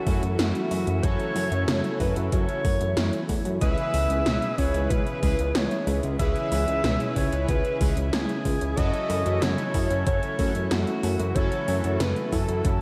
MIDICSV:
0, 0, Header, 1, 7, 480
1, 0, Start_track
1, 0, Tempo, 645161
1, 769, Time_signature, 4, 2, 24, 8
1, 9535, End_track
2, 0, Start_track
2, 0, Title_t, "Alto saxophone"
2, 0, Program_c, 0, 65
2, 0, Note_on_c, 0, 66, 96
2, 287, Note_off_c, 0, 66, 0
2, 291, Note_on_c, 0, 66, 91
2, 772, Note_on_c, 0, 73, 119
2, 783, Note_off_c, 0, 66, 0
2, 1487, Note_off_c, 0, 73, 0
2, 1491, Note_on_c, 0, 71, 92
2, 1599, Note_off_c, 0, 71, 0
2, 1731, Note_on_c, 0, 73, 98
2, 2421, Note_off_c, 0, 73, 0
2, 2688, Note_on_c, 0, 76, 125
2, 3408, Note_on_c, 0, 73, 107
2, 3419, Note_off_c, 0, 76, 0
2, 3647, Note_on_c, 0, 71, 104
2, 3658, Note_off_c, 0, 73, 0
2, 4128, Note_on_c, 0, 73, 100
2, 4140, Note_off_c, 0, 71, 0
2, 4489, Note_off_c, 0, 73, 0
2, 4608, Note_on_c, 0, 76, 125
2, 5299, Note_off_c, 0, 76, 0
2, 5328, Note_on_c, 0, 73, 104
2, 5552, Note_off_c, 0, 73, 0
2, 5569, Note_on_c, 0, 71, 96
2, 5829, Note_off_c, 0, 71, 0
2, 6049, Note_on_c, 0, 68, 95
2, 6529, Note_on_c, 0, 75, 113
2, 6540, Note_off_c, 0, 68, 0
2, 7011, Note_on_c, 0, 73, 107
2, 7022, Note_off_c, 0, 75, 0
2, 7488, Note_off_c, 0, 73, 0
2, 7492, Note_on_c, 0, 73, 105
2, 7941, Note_off_c, 0, 73, 0
2, 7971, Note_on_c, 0, 66, 93
2, 8451, Note_on_c, 0, 73, 110
2, 8462, Note_off_c, 0, 66, 0
2, 8926, Note_off_c, 0, 73, 0
2, 8930, Note_on_c, 0, 71, 96
2, 9172, Note_on_c, 0, 69, 96
2, 9183, Note_off_c, 0, 71, 0
2, 9535, Note_off_c, 0, 69, 0
2, 9535, End_track
3, 0, Start_track
3, 0, Title_t, "Analog polysynth"
3, 0, Program_c, 1, 90
3, 48, Note_on_c, 1, 54, 91
3, 49, Note_on_c, 1, 61, 84
3, 49, Note_on_c, 1, 64, 83
3, 49, Note_on_c, 1, 66, 87
3, 49, Note_on_c, 1, 69, 98
3, 163, Note_off_c, 1, 54, 0
3, 163, Note_off_c, 1, 61, 0
3, 163, Note_off_c, 1, 64, 0
3, 163, Note_off_c, 1, 66, 0
3, 163, Note_off_c, 1, 69, 0
3, 769, Note_on_c, 1, 54, 97
3, 769, Note_on_c, 1, 61, 88
3, 769, Note_on_c, 1, 64, 90
3, 769, Note_on_c, 1, 66, 86
3, 769, Note_on_c, 1, 69, 104
3, 1940, Note_off_c, 1, 54, 0
3, 1940, Note_off_c, 1, 61, 0
3, 1940, Note_off_c, 1, 64, 0
3, 1940, Note_off_c, 1, 66, 0
3, 1940, Note_off_c, 1, 69, 0
3, 2688, Note_on_c, 1, 49, 100
3, 2688, Note_on_c, 1, 61, 91
3, 2688, Note_on_c, 1, 71, 108
3, 2689, Note_on_c, 1, 64, 91
3, 2689, Note_on_c, 1, 68, 89
3, 3860, Note_off_c, 1, 49, 0
3, 3860, Note_off_c, 1, 61, 0
3, 3860, Note_off_c, 1, 64, 0
3, 3860, Note_off_c, 1, 68, 0
3, 3860, Note_off_c, 1, 71, 0
3, 3889, Note_on_c, 1, 49, 93
3, 3889, Note_on_c, 1, 61, 86
3, 3889, Note_on_c, 1, 64, 81
3, 3889, Note_on_c, 1, 68, 87
3, 3889, Note_on_c, 1, 71, 98
3, 4003, Note_off_c, 1, 49, 0
3, 4003, Note_off_c, 1, 61, 0
3, 4003, Note_off_c, 1, 64, 0
3, 4003, Note_off_c, 1, 68, 0
3, 4003, Note_off_c, 1, 71, 0
3, 4609, Note_on_c, 1, 49, 97
3, 4609, Note_on_c, 1, 61, 87
3, 4609, Note_on_c, 1, 64, 89
3, 4609, Note_on_c, 1, 68, 91
3, 4609, Note_on_c, 1, 71, 107
3, 5780, Note_off_c, 1, 49, 0
3, 5780, Note_off_c, 1, 61, 0
3, 5780, Note_off_c, 1, 64, 0
3, 5780, Note_off_c, 1, 68, 0
3, 5780, Note_off_c, 1, 71, 0
3, 5809, Note_on_c, 1, 49, 90
3, 5809, Note_on_c, 1, 61, 82
3, 5809, Note_on_c, 1, 64, 84
3, 5809, Note_on_c, 1, 68, 85
3, 5809, Note_on_c, 1, 71, 98
3, 5923, Note_off_c, 1, 49, 0
3, 5923, Note_off_c, 1, 61, 0
3, 5923, Note_off_c, 1, 64, 0
3, 5923, Note_off_c, 1, 68, 0
3, 5923, Note_off_c, 1, 71, 0
3, 6529, Note_on_c, 1, 54, 96
3, 6529, Note_on_c, 1, 61, 87
3, 6529, Note_on_c, 1, 64, 88
3, 6529, Note_on_c, 1, 66, 91
3, 6529, Note_on_c, 1, 69, 111
3, 7700, Note_off_c, 1, 54, 0
3, 7700, Note_off_c, 1, 61, 0
3, 7700, Note_off_c, 1, 64, 0
3, 7700, Note_off_c, 1, 66, 0
3, 7700, Note_off_c, 1, 69, 0
3, 7729, Note_on_c, 1, 69, 102
3, 7730, Note_on_c, 1, 54, 92
3, 7730, Note_on_c, 1, 61, 85
3, 7730, Note_on_c, 1, 64, 83
3, 7730, Note_on_c, 1, 66, 84
3, 7843, Note_off_c, 1, 54, 0
3, 7843, Note_off_c, 1, 61, 0
3, 7843, Note_off_c, 1, 64, 0
3, 7843, Note_off_c, 1, 66, 0
3, 7843, Note_off_c, 1, 69, 0
3, 8450, Note_on_c, 1, 54, 97
3, 8450, Note_on_c, 1, 61, 88
3, 8450, Note_on_c, 1, 64, 90
3, 8450, Note_on_c, 1, 66, 94
3, 8450, Note_on_c, 1, 69, 109
3, 9535, Note_off_c, 1, 54, 0
3, 9535, Note_off_c, 1, 61, 0
3, 9535, Note_off_c, 1, 64, 0
3, 9535, Note_off_c, 1, 66, 0
3, 9535, Note_off_c, 1, 69, 0
3, 9535, End_track
4, 0, Start_track
4, 0, Title_t, "Analog synth pad"
4, 0, Program_c, 2, 89
4, 0, Note_on_c, 2, 49, 76
4, 0, Note_on_c, 2, 52, 70
4, 0, Note_on_c, 2, 54, 74
4, 0, Note_on_c, 2, 57, 69
4, 0, Note_on_c, 2, 64, 90
4, 2659, Note_off_c, 2, 57, 0
4, 2660, Note_off_c, 2, 49, 0
4, 2660, Note_off_c, 2, 54, 0
4, 2661, Note_off_c, 2, 64, 0
4, 2688, Note_on_c, 2, 59, 73
4, 2688, Note_on_c, 2, 64, 91
4, 2689, Note_on_c, 2, 49, 82
4, 2689, Note_on_c, 2, 56, 73
4, 4590, Note_off_c, 2, 59, 0
4, 4610, Note_on_c, 2, 61, 75
4, 6499, Note_off_c, 2, 56, 0
4, 6500, Note_off_c, 2, 52, 0
4, 6511, Note_off_c, 2, 61, 0
4, 6527, Note_on_c, 2, 52, 75
4, 6527, Note_on_c, 2, 57, 74
4, 6528, Note_on_c, 2, 54, 73
4, 9535, Note_off_c, 2, 49, 0
4, 9535, Note_off_c, 2, 52, 0
4, 9535, Note_off_c, 2, 54, 0
4, 9535, Note_off_c, 2, 57, 0
4, 9535, Note_off_c, 2, 64, 0
4, 9535, End_track
5, 0, Start_track
5, 0, Title_t, "Synth arpeggio sound"
5, 0, Program_c, 3, 84
5, 48, Note_on_c, 3, 57, 99
5, 251, Note_off_c, 3, 57, 0
5, 288, Note_on_c, 3, 64, 77
5, 491, Note_off_c, 3, 64, 0
5, 528, Note_on_c, 3, 57, 76
5, 650, Note_off_c, 3, 57, 0
5, 768, Note_on_c, 3, 49, 85
5, 971, Note_off_c, 3, 49, 0
5, 1009, Note_on_c, 3, 54, 72
5, 1237, Note_off_c, 3, 54, 0
5, 1249, Note_on_c, 3, 49, 94
5, 1477, Note_off_c, 3, 49, 0
5, 1489, Note_on_c, 3, 64, 73
5, 1717, Note_off_c, 3, 64, 0
5, 1729, Note_on_c, 3, 49, 82
5, 1850, Note_off_c, 3, 49, 0
5, 1967, Note_on_c, 3, 57, 101
5, 2170, Note_off_c, 3, 57, 0
5, 2209, Note_on_c, 3, 64, 74
5, 2411, Note_off_c, 3, 64, 0
5, 2449, Note_on_c, 3, 57, 81
5, 2570, Note_off_c, 3, 57, 0
5, 2688, Note_on_c, 3, 47, 85
5, 2891, Note_off_c, 3, 47, 0
5, 2928, Note_on_c, 3, 52, 79
5, 3157, Note_off_c, 3, 52, 0
5, 3169, Note_on_c, 3, 47, 94
5, 3397, Note_off_c, 3, 47, 0
5, 3407, Note_on_c, 3, 61, 78
5, 3636, Note_off_c, 3, 61, 0
5, 3648, Note_on_c, 3, 47, 82
5, 3770, Note_off_c, 3, 47, 0
5, 3887, Note_on_c, 3, 56, 96
5, 4090, Note_off_c, 3, 56, 0
5, 4128, Note_on_c, 3, 61, 79
5, 4331, Note_off_c, 3, 61, 0
5, 4368, Note_on_c, 3, 56, 81
5, 4490, Note_off_c, 3, 56, 0
5, 4608, Note_on_c, 3, 47, 86
5, 4811, Note_off_c, 3, 47, 0
5, 4848, Note_on_c, 3, 52, 79
5, 5077, Note_off_c, 3, 52, 0
5, 5088, Note_on_c, 3, 47, 95
5, 5316, Note_off_c, 3, 47, 0
5, 5328, Note_on_c, 3, 61, 78
5, 5557, Note_off_c, 3, 61, 0
5, 5568, Note_on_c, 3, 47, 82
5, 5690, Note_off_c, 3, 47, 0
5, 5809, Note_on_c, 3, 56, 98
5, 6011, Note_off_c, 3, 56, 0
5, 6048, Note_on_c, 3, 61, 81
5, 6251, Note_off_c, 3, 61, 0
5, 6289, Note_on_c, 3, 56, 77
5, 6410, Note_off_c, 3, 56, 0
5, 6529, Note_on_c, 3, 49, 84
5, 6731, Note_off_c, 3, 49, 0
5, 6769, Note_on_c, 3, 54, 81
5, 6997, Note_off_c, 3, 54, 0
5, 7008, Note_on_c, 3, 49, 102
5, 7237, Note_off_c, 3, 49, 0
5, 7250, Note_on_c, 3, 64, 82
5, 7478, Note_off_c, 3, 64, 0
5, 7490, Note_on_c, 3, 49, 87
5, 7611, Note_off_c, 3, 49, 0
5, 7729, Note_on_c, 3, 57, 94
5, 7931, Note_off_c, 3, 57, 0
5, 7970, Note_on_c, 3, 64, 77
5, 8172, Note_off_c, 3, 64, 0
5, 8210, Note_on_c, 3, 57, 79
5, 8331, Note_off_c, 3, 57, 0
5, 8450, Note_on_c, 3, 49, 85
5, 8652, Note_off_c, 3, 49, 0
5, 8689, Note_on_c, 3, 54, 77
5, 8917, Note_off_c, 3, 54, 0
5, 8929, Note_on_c, 3, 49, 99
5, 9157, Note_off_c, 3, 49, 0
5, 9169, Note_on_c, 3, 64, 77
5, 9397, Note_off_c, 3, 64, 0
5, 9410, Note_on_c, 3, 49, 84
5, 9531, Note_off_c, 3, 49, 0
5, 9535, End_track
6, 0, Start_track
6, 0, Title_t, "Analog synth bass"
6, 0, Program_c, 4, 38
6, 51, Note_on_c, 4, 42, 92
6, 149, Note_off_c, 4, 42, 0
6, 169, Note_on_c, 4, 42, 85
6, 268, Note_off_c, 4, 42, 0
6, 290, Note_on_c, 4, 42, 103
6, 389, Note_off_c, 4, 42, 0
6, 530, Note_on_c, 4, 42, 92
6, 629, Note_off_c, 4, 42, 0
6, 650, Note_on_c, 4, 42, 83
6, 749, Note_off_c, 4, 42, 0
6, 770, Note_on_c, 4, 42, 97
6, 869, Note_off_c, 4, 42, 0
6, 1009, Note_on_c, 4, 42, 93
6, 1108, Note_off_c, 4, 42, 0
6, 1128, Note_on_c, 4, 42, 88
6, 1228, Note_off_c, 4, 42, 0
6, 1249, Note_on_c, 4, 42, 105
6, 1348, Note_off_c, 4, 42, 0
6, 1490, Note_on_c, 4, 42, 99
6, 1589, Note_off_c, 4, 42, 0
6, 1609, Note_on_c, 4, 42, 85
6, 1708, Note_off_c, 4, 42, 0
6, 1730, Note_on_c, 4, 42, 97
6, 1829, Note_off_c, 4, 42, 0
6, 1970, Note_on_c, 4, 42, 92
6, 2069, Note_off_c, 4, 42, 0
6, 2089, Note_on_c, 4, 42, 87
6, 2188, Note_off_c, 4, 42, 0
6, 2209, Note_on_c, 4, 42, 106
6, 2308, Note_off_c, 4, 42, 0
6, 2449, Note_on_c, 4, 40, 101
6, 2548, Note_off_c, 4, 40, 0
6, 2568, Note_on_c, 4, 42, 87
6, 2668, Note_off_c, 4, 42, 0
6, 2690, Note_on_c, 4, 37, 97
6, 2789, Note_off_c, 4, 37, 0
6, 2930, Note_on_c, 4, 37, 93
6, 3029, Note_off_c, 4, 37, 0
6, 3050, Note_on_c, 4, 37, 84
6, 3149, Note_off_c, 4, 37, 0
6, 3170, Note_on_c, 4, 37, 99
6, 3269, Note_off_c, 4, 37, 0
6, 3410, Note_on_c, 4, 37, 94
6, 3508, Note_off_c, 4, 37, 0
6, 3529, Note_on_c, 4, 37, 83
6, 3628, Note_off_c, 4, 37, 0
6, 3650, Note_on_c, 4, 37, 101
6, 3749, Note_off_c, 4, 37, 0
6, 3890, Note_on_c, 4, 37, 92
6, 3989, Note_off_c, 4, 37, 0
6, 4008, Note_on_c, 4, 37, 89
6, 4108, Note_off_c, 4, 37, 0
6, 4128, Note_on_c, 4, 37, 107
6, 4228, Note_off_c, 4, 37, 0
6, 4368, Note_on_c, 4, 37, 95
6, 4468, Note_off_c, 4, 37, 0
6, 4489, Note_on_c, 4, 37, 89
6, 4588, Note_off_c, 4, 37, 0
6, 4610, Note_on_c, 4, 37, 100
6, 4708, Note_off_c, 4, 37, 0
6, 4849, Note_on_c, 4, 37, 96
6, 4948, Note_off_c, 4, 37, 0
6, 4969, Note_on_c, 4, 37, 85
6, 5068, Note_off_c, 4, 37, 0
6, 5089, Note_on_c, 4, 37, 105
6, 5188, Note_off_c, 4, 37, 0
6, 5329, Note_on_c, 4, 37, 100
6, 5428, Note_off_c, 4, 37, 0
6, 5450, Note_on_c, 4, 37, 86
6, 5548, Note_off_c, 4, 37, 0
6, 5570, Note_on_c, 4, 37, 99
6, 5669, Note_off_c, 4, 37, 0
6, 5810, Note_on_c, 4, 37, 96
6, 5909, Note_off_c, 4, 37, 0
6, 5929, Note_on_c, 4, 37, 90
6, 6028, Note_off_c, 4, 37, 0
6, 6049, Note_on_c, 4, 37, 106
6, 6148, Note_off_c, 4, 37, 0
6, 6290, Note_on_c, 4, 37, 98
6, 6389, Note_off_c, 4, 37, 0
6, 6409, Note_on_c, 4, 37, 85
6, 6508, Note_off_c, 4, 37, 0
6, 6530, Note_on_c, 4, 42, 99
6, 6629, Note_off_c, 4, 42, 0
6, 6770, Note_on_c, 4, 42, 97
6, 6868, Note_off_c, 4, 42, 0
6, 6891, Note_on_c, 4, 42, 88
6, 6989, Note_off_c, 4, 42, 0
6, 7010, Note_on_c, 4, 42, 104
6, 7109, Note_off_c, 4, 42, 0
6, 7250, Note_on_c, 4, 42, 93
6, 7349, Note_off_c, 4, 42, 0
6, 7370, Note_on_c, 4, 42, 84
6, 7469, Note_off_c, 4, 42, 0
6, 7490, Note_on_c, 4, 42, 101
6, 7588, Note_off_c, 4, 42, 0
6, 7730, Note_on_c, 4, 42, 91
6, 7829, Note_off_c, 4, 42, 0
6, 7851, Note_on_c, 4, 42, 82
6, 7949, Note_off_c, 4, 42, 0
6, 7971, Note_on_c, 4, 42, 106
6, 8069, Note_off_c, 4, 42, 0
6, 8211, Note_on_c, 4, 42, 96
6, 8309, Note_off_c, 4, 42, 0
6, 8330, Note_on_c, 4, 42, 87
6, 8429, Note_off_c, 4, 42, 0
6, 8450, Note_on_c, 4, 42, 97
6, 8549, Note_off_c, 4, 42, 0
6, 8691, Note_on_c, 4, 42, 94
6, 8789, Note_off_c, 4, 42, 0
6, 8811, Note_on_c, 4, 42, 83
6, 8909, Note_off_c, 4, 42, 0
6, 8930, Note_on_c, 4, 42, 107
6, 9029, Note_off_c, 4, 42, 0
6, 9170, Note_on_c, 4, 42, 100
6, 9269, Note_off_c, 4, 42, 0
6, 9290, Note_on_c, 4, 42, 86
6, 9389, Note_off_c, 4, 42, 0
6, 9411, Note_on_c, 4, 42, 104
6, 9509, Note_off_c, 4, 42, 0
6, 9535, End_track
7, 0, Start_track
7, 0, Title_t, "Drums"
7, 49, Note_on_c, 9, 46, 75
7, 50, Note_on_c, 9, 36, 107
7, 124, Note_off_c, 9, 36, 0
7, 124, Note_off_c, 9, 46, 0
7, 170, Note_on_c, 9, 42, 53
7, 244, Note_off_c, 9, 42, 0
7, 290, Note_on_c, 9, 38, 127
7, 290, Note_on_c, 9, 42, 87
7, 364, Note_off_c, 9, 38, 0
7, 364, Note_off_c, 9, 42, 0
7, 410, Note_on_c, 9, 42, 40
7, 485, Note_off_c, 9, 42, 0
7, 529, Note_on_c, 9, 46, 76
7, 604, Note_off_c, 9, 46, 0
7, 649, Note_on_c, 9, 42, 59
7, 724, Note_off_c, 9, 42, 0
7, 770, Note_on_c, 9, 36, 127
7, 770, Note_on_c, 9, 42, 76
7, 844, Note_off_c, 9, 36, 0
7, 844, Note_off_c, 9, 42, 0
7, 890, Note_on_c, 9, 42, 35
7, 964, Note_off_c, 9, 42, 0
7, 1009, Note_on_c, 9, 46, 79
7, 1084, Note_off_c, 9, 46, 0
7, 1129, Note_on_c, 9, 42, 52
7, 1203, Note_off_c, 9, 42, 0
7, 1249, Note_on_c, 9, 38, 127
7, 1249, Note_on_c, 9, 42, 83
7, 1324, Note_off_c, 9, 38, 0
7, 1324, Note_off_c, 9, 42, 0
7, 1370, Note_on_c, 9, 42, 36
7, 1444, Note_off_c, 9, 42, 0
7, 1489, Note_on_c, 9, 46, 73
7, 1490, Note_on_c, 9, 36, 66
7, 1564, Note_off_c, 9, 36, 0
7, 1564, Note_off_c, 9, 46, 0
7, 1609, Note_on_c, 9, 42, 55
7, 1684, Note_off_c, 9, 42, 0
7, 1729, Note_on_c, 9, 42, 82
7, 1730, Note_on_c, 9, 36, 121
7, 1803, Note_off_c, 9, 42, 0
7, 1804, Note_off_c, 9, 36, 0
7, 1849, Note_on_c, 9, 42, 36
7, 1924, Note_off_c, 9, 42, 0
7, 1969, Note_on_c, 9, 46, 77
7, 1970, Note_on_c, 9, 36, 107
7, 2044, Note_off_c, 9, 36, 0
7, 2044, Note_off_c, 9, 46, 0
7, 2089, Note_on_c, 9, 42, 52
7, 2163, Note_off_c, 9, 42, 0
7, 2209, Note_on_c, 9, 38, 127
7, 2209, Note_on_c, 9, 42, 81
7, 2283, Note_off_c, 9, 38, 0
7, 2283, Note_off_c, 9, 42, 0
7, 2329, Note_on_c, 9, 42, 38
7, 2403, Note_off_c, 9, 42, 0
7, 2448, Note_on_c, 9, 46, 78
7, 2449, Note_on_c, 9, 36, 64
7, 2522, Note_off_c, 9, 46, 0
7, 2524, Note_off_c, 9, 36, 0
7, 2569, Note_on_c, 9, 42, 56
7, 2643, Note_off_c, 9, 42, 0
7, 2689, Note_on_c, 9, 36, 115
7, 2689, Note_on_c, 9, 42, 80
7, 2763, Note_off_c, 9, 42, 0
7, 2764, Note_off_c, 9, 36, 0
7, 2809, Note_on_c, 9, 42, 34
7, 2884, Note_off_c, 9, 42, 0
7, 2930, Note_on_c, 9, 46, 77
7, 3004, Note_off_c, 9, 46, 0
7, 3050, Note_on_c, 9, 42, 50
7, 3125, Note_off_c, 9, 42, 0
7, 3170, Note_on_c, 9, 38, 123
7, 3170, Note_on_c, 9, 42, 75
7, 3244, Note_off_c, 9, 38, 0
7, 3244, Note_off_c, 9, 42, 0
7, 3290, Note_on_c, 9, 42, 36
7, 3364, Note_off_c, 9, 42, 0
7, 3410, Note_on_c, 9, 36, 65
7, 3410, Note_on_c, 9, 46, 78
7, 3484, Note_off_c, 9, 36, 0
7, 3484, Note_off_c, 9, 46, 0
7, 3530, Note_on_c, 9, 42, 53
7, 3604, Note_off_c, 9, 42, 0
7, 3649, Note_on_c, 9, 42, 78
7, 3650, Note_on_c, 9, 36, 123
7, 3723, Note_off_c, 9, 42, 0
7, 3724, Note_off_c, 9, 36, 0
7, 3769, Note_on_c, 9, 42, 36
7, 3843, Note_off_c, 9, 42, 0
7, 3889, Note_on_c, 9, 46, 82
7, 3890, Note_on_c, 9, 36, 100
7, 3964, Note_off_c, 9, 36, 0
7, 3964, Note_off_c, 9, 46, 0
7, 4009, Note_on_c, 9, 42, 53
7, 4084, Note_off_c, 9, 42, 0
7, 4129, Note_on_c, 9, 38, 122
7, 4129, Note_on_c, 9, 42, 79
7, 4203, Note_off_c, 9, 38, 0
7, 4203, Note_off_c, 9, 42, 0
7, 4249, Note_on_c, 9, 42, 36
7, 4323, Note_off_c, 9, 42, 0
7, 4369, Note_on_c, 9, 46, 81
7, 4443, Note_off_c, 9, 46, 0
7, 4488, Note_on_c, 9, 42, 54
7, 4563, Note_off_c, 9, 42, 0
7, 4608, Note_on_c, 9, 42, 75
7, 4610, Note_on_c, 9, 36, 116
7, 4683, Note_off_c, 9, 42, 0
7, 4684, Note_off_c, 9, 36, 0
7, 4729, Note_on_c, 9, 42, 34
7, 4803, Note_off_c, 9, 42, 0
7, 4849, Note_on_c, 9, 46, 82
7, 4923, Note_off_c, 9, 46, 0
7, 4969, Note_on_c, 9, 42, 48
7, 5043, Note_off_c, 9, 42, 0
7, 5089, Note_on_c, 9, 38, 119
7, 5089, Note_on_c, 9, 42, 81
7, 5164, Note_off_c, 9, 38, 0
7, 5164, Note_off_c, 9, 42, 0
7, 5209, Note_on_c, 9, 42, 35
7, 5284, Note_off_c, 9, 42, 0
7, 5329, Note_on_c, 9, 46, 81
7, 5330, Note_on_c, 9, 36, 63
7, 5403, Note_off_c, 9, 46, 0
7, 5404, Note_off_c, 9, 36, 0
7, 5450, Note_on_c, 9, 42, 53
7, 5524, Note_off_c, 9, 42, 0
7, 5569, Note_on_c, 9, 42, 78
7, 5570, Note_on_c, 9, 36, 115
7, 5643, Note_off_c, 9, 42, 0
7, 5644, Note_off_c, 9, 36, 0
7, 5689, Note_on_c, 9, 42, 33
7, 5763, Note_off_c, 9, 42, 0
7, 5809, Note_on_c, 9, 46, 85
7, 5810, Note_on_c, 9, 36, 104
7, 5883, Note_off_c, 9, 46, 0
7, 5884, Note_off_c, 9, 36, 0
7, 5929, Note_on_c, 9, 42, 51
7, 6004, Note_off_c, 9, 42, 0
7, 6049, Note_on_c, 9, 38, 117
7, 6049, Note_on_c, 9, 42, 79
7, 6123, Note_off_c, 9, 38, 0
7, 6123, Note_off_c, 9, 42, 0
7, 6169, Note_on_c, 9, 42, 36
7, 6243, Note_off_c, 9, 42, 0
7, 6289, Note_on_c, 9, 46, 83
7, 6290, Note_on_c, 9, 36, 58
7, 6363, Note_off_c, 9, 46, 0
7, 6364, Note_off_c, 9, 36, 0
7, 6408, Note_on_c, 9, 42, 54
7, 6483, Note_off_c, 9, 42, 0
7, 6528, Note_on_c, 9, 42, 79
7, 6530, Note_on_c, 9, 36, 113
7, 6603, Note_off_c, 9, 42, 0
7, 6604, Note_off_c, 9, 36, 0
7, 6648, Note_on_c, 9, 42, 35
7, 6723, Note_off_c, 9, 42, 0
7, 6769, Note_on_c, 9, 46, 84
7, 6843, Note_off_c, 9, 46, 0
7, 6888, Note_on_c, 9, 42, 54
7, 6963, Note_off_c, 9, 42, 0
7, 7009, Note_on_c, 9, 38, 121
7, 7009, Note_on_c, 9, 42, 78
7, 7083, Note_off_c, 9, 38, 0
7, 7083, Note_off_c, 9, 42, 0
7, 7129, Note_on_c, 9, 42, 37
7, 7203, Note_off_c, 9, 42, 0
7, 7248, Note_on_c, 9, 46, 80
7, 7250, Note_on_c, 9, 36, 65
7, 7322, Note_off_c, 9, 46, 0
7, 7324, Note_off_c, 9, 36, 0
7, 7369, Note_on_c, 9, 42, 50
7, 7444, Note_off_c, 9, 42, 0
7, 7489, Note_on_c, 9, 42, 82
7, 7490, Note_on_c, 9, 36, 108
7, 7563, Note_off_c, 9, 42, 0
7, 7564, Note_off_c, 9, 36, 0
7, 7609, Note_on_c, 9, 42, 37
7, 7684, Note_off_c, 9, 42, 0
7, 7729, Note_on_c, 9, 46, 85
7, 7730, Note_on_c, 9, 36, 96
7, 7803, Note_off_c, 9, 46, 0
7, 7804, Note_off_c, 9, 36, 0
7, 7849, Note_on_c, 9, 42, 50
7, 7923, Note_off_c, 9, 42, 0
7, 7969, Note_on_c, 9, 38, 113
7, 7969, Note_on_c, 9, 42, 84
7, 8043, Note_off_c, 9, 38, 0
7, 8043, Note_off_c, 9, 42, 0
7, 8089, Note_on_c, 9, 42, 36
7, 8163, Note_off_c, 9, 42, 0
7, 8209, Note_on_c, 9, 46, 85
7, 8283, Note_off_c, 9, 46, 0
7, 8329, Note_on_c, 9, 42, 54
7, 8404, Note_off_c, 9, 42, 0
7, 8449, Note_on_c, 9, 42, 79
7, 8450, Note_on_c, 9, 36, 120
7, 8524, Note_off_c, 9, 36, 0
7, 8524, Note_off_c, 9, 42, 0
7, 8569, Note_on_c, 9, 42, 37
7, 8644, Note_off_c, 9, 42, 0
7, 8690, Note_on_c, 9, 46, 83
7, 8764, Note_off_c, 9, 46, 0
7, 8809, Note_on_c, 9, 42, 53
7, 8884, Note_off_c, 9, 42, 0
7, 8929, Note_on_c, 9, 38, 118
7, 8929, Note_on_c, 9, 42, 85
7, 9004, Note_off_c, 9, 38, 0
7, 9004, Note_off_c, 9, 42, 0
7, 9049, Note_on_c, 9, 42, 37
7, 9124, Note_off_c, 9, 42, 0
7, 9170, Note_on_c, 9, 36, 65
7, 9170, Note_on_c, 9, 46, 79
7, 9244, Note_off_c, 9, 36, 0
7, 9244, Note_off_c, 9, 46, 0
7, 9289, Note_on_c, 9, 42, 55
7, 9363, Note_off_c, 9, 42, 0
7, 9409, Note_on_c, 9, 42, 88
7, 9410, Note_on_c, 9, 36, 114
7, 9484, Note_off_c, 9, 36, 0
7, 9484, Note_off_c, 9, 42, 0
7, 9535, End_track
0, 0, End_of_file